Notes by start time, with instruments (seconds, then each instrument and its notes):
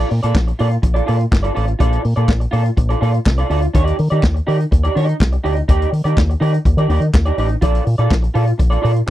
0.11 fingered electric bass A#2, muted clean electric guitar stroke, open hi-hat
0.23 fingered electric bass A#2, clean electric guitar F4 A4 D5, closed hi-hat
0.35 fingered electric bass A#1, kick, snare, clap
0.47 muted clean electric guitar stroke, closed hi-hat
0.59 fingered electric bass A#2, clean electric guitar F4 A4 D5, open hi-hat
0.70 muted clean electric guitar stroke, closed hi-hat
0.82 fingered electric bass A#1, muted clean electric guitar stroke, kick, closed hi-hat
0.94 clean electric guitar F4 A4 D5, closed hi-hat
1.06 fingered electric bass A#2, clean electric guitar F4 A4 D5, open hi-hat
1.19 muted clean electric guitar stroke, closed hi-hat
1.32 fingered electric bass G1, muted clean electric guitar stroke, kick, snare, clap
1.43 clean electric guitar F4 A4 D5, closed hi-hat
1.55 fingered electric bass A1, clean electric guitar F4 A4 D5, open hi-hat
1.67 muted clean electric guitar stroke, closed hi-hat
1.79 fingered electric bass A#1, clean electric guitar F4 A4 D5, kick, closed hi-hat
1.93 closed hi-hat
2.04 fingered electric bass A#2, muted clean electric guitar stroke, open hi-hat
2.16 fingered electric bass A#2, clean electric guitar F4 A4 D5, closed hi-hat
2.28 fingered electric bass A#1, kick, snare, clap
2.40 muted clean electric guitar stroke, closed hi-hat
2.51 fingered electric bass A#2, clean electric guitar F4 A4 D5, open hi-hat
2.64 muted clean electric guitar stroke, closed hi-hat
2.77 fingered electric bass A#1, muted clean electric guitar stroke, kick, closed hi-hat
2.89 clean electric guitar F4 A4 D5, closed hi-hat
3.01 fingered electric bass A#2, clean electric guitar F4 A4 D5, open hi-hat
3.14 muted clean electric guitar stroke, closed hi-hat
3.26 fingered electric bass C2, muted clean electric guitar stroke, kick, snare, clap
3.38 clean electric guitar F4 A4 D5, closed hi-hat
3.50 fingered electric bass D2, clean electric guitar F4 A4 D5, open hi-hat
3.62 muted clean electric guitar stroke, closed hi-hat
3.73 fingered electric bass D#2, clean electric guitar D#4 G4 D5, kick, closed hi-hat
3.87 closed hi-hat
3.99 fingered electric bass D#3, muted clean electric guitar stroke, open hi-hat
4.10 fingered electric bass D#3, clean electric guitar D#4 G4 D5, closed hi-hat
4.23 fingered electric bass D#2, kick, snare, clap
4.34 muted clean electric guitar stroke, closed hi-hat
4.47 fingered electric bass D#3, clean electric guitar D#4 G4 D5, open hi-hat
4.59 muted clean electric guitar stroke, closed hi-hat
4.71 fingered electric bass D#2, muted clean electric guitar stroke, kick, closed hi-hat
4.83 clean electric guitar D#4 G4 D5, closed hi-hat
4.95 fingered electric bass D#3, clean electric guitar D#4 G4 D5, open hi-hat
5.08 muted clean electric guitar stroke, closed hi-hat
5.20 fingered electric bass C2, kick, snare, clap
5.32 muted clean electric guitar stroke, closed hi-hat
5.44 fingered electric bass D2, clean electric guitar D#4 G4 D5, open hi-hat
5.56 muted clean electric guitar stroke, closed hi-hat
5.68 fingered electric bass D#2, clean electric guitar D#4 G4 D5, kick, closed hi-hat
5.82 closed hi-hat
5.92 fingered electric bass D#3, muted clean electric guitar stroke, open hi-hat
6.04 fingered electric bass D#3, clean electric guitar D#4 G4 D5, closed hi-hat
6.17 fingered electric bass D#2, kick, snare, clap
6.30 muted clean electric guitar stroke, closed hi-hat
6.40 fingered electric bass D#3, clean electric guitar D#4 G4 D5, open hi-hat
6.54 muted clean electric guitar stroke, closed hi-hat
6.65 fingered electric bass D#2, muted clean electric guitar stroke, kick, closed hi-hat
6.77 fingered electric bass D#3, clean electric guitar D#4 G4 D5, closed hi-hat
6.89 fingered electric bass D#2, clean electric guitar D#4 G4 D5, open hi-hat
7.00 fingered electric bass D#3, muted clean electric guitar stroke, closed hi-hat
7.14 fingered electric bass D#2, muted clean electric guitar stroke, kick, snare, clap
7.25 clean electric guitar D#4 G4 D5, closed hi-hat
7.38 fingered electric bass A1, clean electric guitar D#4 G4 D5, open hi-hat
7.49 muted clean electric guitar stroke, closed hi-hat
7.61 fingered electric bass A#1, clean electric guitar F4 A4 D5, kick, closed hi-hat
7.75 closed hi-hat
7.86 fingered electric bass A#2, muted clean electric guitar stroke, open hi-hat
7.98 fingered electric bass A#2, clean electric guitar F4 A4 D5, closed hi-hat
8.11 fingered electric bass A#1, kick, snare, clap
8.23 muted clean electric guitar stroke, closed hi-hat
8.34 fingered electric bass A#2, clean electric guitar F4 A4 D5, open hi-hat
8.47 muted clean electric guitar stroke, closed hi-hat
8.58 fingered electric bass A#1, muted clean electric guitar stroke, kick, closed hi-hat
8.70 clean electric guitar F4 A4 D5, closed hi-hat
8.82 fingered electric bass A#2, clean electric guitar F4 A4 D5, open hi-hat
8.94 muted clean electric guitar stroke, closed hi-hat
9.07 muted clean electric guitar stroke